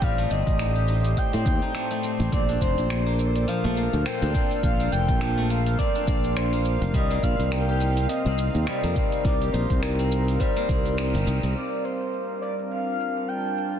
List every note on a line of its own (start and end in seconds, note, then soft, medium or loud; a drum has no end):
0.00 0.26 A1 medium
0.00 2.33 A2 medium
0.00 2.38 G3 loud
0.00 0.18 A3 loud
0.00 2.33 A3 medium
0.00 0.30 C4 medium
0.00 11.54 C4 medium
0.00 0.59 D#4 medium
0.00 0.75 G4 medium
0.00 3.48 G4 medium
0.00 8.80 C5 medium
0.00 11.54 C5 medium
0.00 2.33 D#5 medium
0.00 0.31 F5 loud
0.00 kick loud
0.00 open hi-hat medium
0.00 shaker soft
0.18 1.74 A3 medium
0.18 open hi-hat soft
0.18 shaker soft
0.31 0.44 G1 loud
0.31 1.32 C4 medium
0.31 1.19 D#5 medium
0.31 shaker medium
0.47 1.13 A1 medium
0.47 kick loud
0.47 open hi-hat soft
0.47 shaker soft
0.59 0.87 D#4 medium
0.59 finger snap medium
0.59 open hi-hat medium
0.59 shaker soft
0.75 3.11 G4 medium
0.88 1.61 D#4 medium
0.88 shaker medium
1.05 open hi-hat soft
1.05 shaker soft
1.17 2.04 G5 medium
1.17 kick medium
1.17 open hi-hat medium
1.17 shaker soft
1.33 1.44 A2 medium
1.33 2.03 C4 medium
1.33 open hi-hat soft
1.33 shaker soft
1.46 1.59 D#2 loud
1.46 kick loud
1.46 shaker medium
1.62 2.55 D#4 medium
1.62 shaker soft
1.74 1.90 A3 medium
1.74 finger snap loud
1.74 open hi-hat medium
1.74 shaker soft
1.91 3.12 A3 medium
1.91 open hi-hat soft
1.91 shaker soft
2.03 2.32 C4 medium
2.03 shaker medium
2.20 2.30 A1 medium
2.20 open hi-hat soft
2.20 shaker soft
2.32 2.56 A#1 medium
2.32 6.94 A#2 medium
2.32 2.61 C4 medium
2.32 2.59 D5 loud
2.32 kick loud
2.32 open hi-hat medium
2.32 shaker soft
2.49 4.22 D4 medium
2.49 open hi-hat soft
2.49 shaker soft
2.61 2.74 F1 loud
2.61 4.05 C4 medium
2.61 3.15 C5 loud
2.61 kick medium
2.61 shaker medium
2.78 3.44 A#1 medium
2.78 open hi-hat soft
2.78 shaker soft
2.90 finger snap medium
2.90 open hi-hat medium
2.90 shaker soft
3.06 3.70 A#3 medium
3.06 6.94 A4 medium
3.19 3.28 D5 medium
3.19 shaker medium
3.27 3.37 C5 medium
3.35 3.49 D5 loud
3.35 open hi-hat soft
3.35 shaker soft
3.48 5.20 F3 medium
3.48 4.07 F5 loud
3.48 open hi-hat medium
3.48 shaker soft
3.64 3.87 A#1 medium
3.64 3.83 A3 loud
3.64 shaker soft
3.77 4.79 A#3 medium
3.77 shaker medium
3.93 4.03 D2 loud
3.93 13.42 F5 medium
3.93 shaker soft
4.06 4.34 C4 medium
4.06 4.51 G5 loud
4.06 finger snap loud
4.06 open hi-hat medium
4.06 shaker soft
4.22 4.32 D2 loud
4.22 5.95 D4 medium
4.22 open hi-hat soft
4.22 shaker soft
4.34 5.78 C4 medium
4.34 kick loud
4.34 shaker medium
4.51 open hi-hat soft
4.51 shaker soft
4.63 4.87 A#1 medium
4.63 4.90 F5 loud
4.63 kick loud
4.63 open hi-hat medium
4.63 shaker soft
4.80 5.43 A#3 medium
4.80 open hi-hat soft
4.80 shaker soft
4.92 5.05 F1 medium
4.92 5.46 G5 loud
4.92 shaker medium
5.08 5.75 A#1 medium
5.08 kick loud
5.08 open hi-hat soft
5.08 shaker soft
5.21 6.99 F3 loud
5.21 finger snap medium
5.21 open hi-hat medium
5.21 shaker soft
5.37 5.56 A3 loud
5.50 6.52 A#3 medium
5.50 5.77 F5 loud
5.50 shaker medium
5.66 open hi-hat soft
5.66 shaker soft
5.79 6.07 C4 medium
5.79 6.38 D5 loud
5.79 kick medium
5.79 open hi-hat medium
5.79 shaker soft
5.95 7.58 D4 medium
5.95 open hi-hat soft
5.95 shaker soft
6.07 6.76 A#1 medium
6.07 7.23 C4 medium
6.07 kick loud
6.07 shaker medium
6.24 shaker soft
6.37 6.82 C5 loud
6.37 finger snap loud
6.37 open hi-hat medium
6.37 shaker soft
6.53 7.10 A#3 medium
6.53 open hi-hat soft
6.53 shaker soft
6.65 shaker medium
6.81 6.91 F1 loud
6.81 open hi-hat soft
6.81 shaker soft
6.94 7.18 C2 loud
6.94 11.55 C3 medium
6.94 8.66 G3 loud
6.94 7.25 D#5 loud
6.94 kick loud
6.94 open hi-hat medium
6.94 shaker soft
7.10 8.83 A#3 loud
7.10 open hi-hat soft
7.10 shaker soft
7.20 7.36 A#1 loud
7.20 12.92 C4 medium
7.20 8.26 C4 medium
7.20 7.51 F5 medium
7.20 kick medium
7.20 shaker medium
7.39 8.05 C2 medium
7.39 open hi-hat soft
7.39 shaker soft
7.52 7.80 D#4 medium
7.52 8.05 G5 loud
7.52 finger snap loud
7.52 open hi-hat medium
7.52 shaker soft
7.69 9.41 G4 medium
7.81 9.25 D#4 medium
7.81 shaker medium
7.97 open hi-hat soft
7.97 shaker soft
8.09 13.79 A#4 medium
8.09 8.92 D#5 medium
8.09 open hi-hat medium
8.09 shaker soft
8.26 8.48 C2 medium
8.26 8.96 C4 medium
8.26 11.55 D#4 medium
8.26 shaker soft
8.38 shaker medium
8.55 8.65 D#2 loud
8.55 shaker soft
8.67 10.39 G3 loud
8.67 finger snap loud
8.67 open hi-hat medium
8.67 shaker soft
8.84 8.93 F2 loud
8.84 10.56 A#3 loud
8.84 open hi-hat soft
8.84 shaker soft
8.96 9.98 C4 medium
8.96 kick loud
8.96 shaker medium
9.12 open hi-hat soft
9.12 shaker soft
9.24 9.49 C2 loud
9.24 9.53 D#4 medium
9.24 9.51 D5 loud
9.24 kick loud
9.24 open hi-hat medium
9.24 shaker soft
9.41 11.14 G4 medium
9.41 open hi-hat soft
9.41 shaker soft
9.53 9.67 A#1 loud
9.53 10.97 D#4 medium
9.53 9.83 C5 medium
9.53 shaker medium
9.70 10.36 C2 medium
9.70 kick loud
9.70 open hi-hat soft
9.70 shaker soft
9.82 10.41 A#4 loud
9.82 finger snap medium
9.82 open hi-hat medium
9.82 shaker soft
9.99 10.68 C4 medium
9.99 open hi-hat soft
9.99 shaker soft
10.12 shaker medium
10.28 open hi-hat soft
10.28 shaker soft
10.40 11.61 G3 loud
10.40 11.26 C5 loud
10.40 kick medium
10.40 open hi-hat medium
10.40 shaker soft
10.56 13.78 A#3 loud
10.56 open hi-hat soft
10.56 shaker soft
10.69 11.14 C2 medium
10.69 13.69 C4 medium
10.69 kick loud
10.69 shaker medium
10.86 open hi-hat soft
10.86 shaker soft
10.97 11.26 D#4 medium
10.97 finger snap loud
10.97 open hi-hat medium
10.97 shaker soft
11.14 11.24 G1 loud
11.14 13.49 G4 medium
11.14 open hi-hat soft
11.14 shaker soft
11.26 11.40 C2 medium
11.26 13.79 D#4 medium
11.26 shaker medium
11.43 11.53 C2 loud
11.43 open hi-hat soft
11.43 shaker soft
11.55 13.79 G3 medium
11.55 13.79 C4 medium
11.55 13.79 C5 medium
11.55 11.86 D5 loud
11.55 shaker soft
11.72 shaker soft
11.84 12.41 C5 medium
11.84 shaker medium
12.01 shaker soft
12.14 shaker soft
12.25 13.79 D4 medium
12.42 12.55 D5 medium
12.42 shaker medium
12.59 shaker soft
12.71 13.30 F5 loud
12.71 shaker soft
12.79 13.79 F4 medium
13.00 shaker medium
13.14 13.79 A5 medium
13.14 shaker soft
13.28 13.74 G5 loud
13.28 shaker soft
13.58 shaker medium
13.75 shaker soft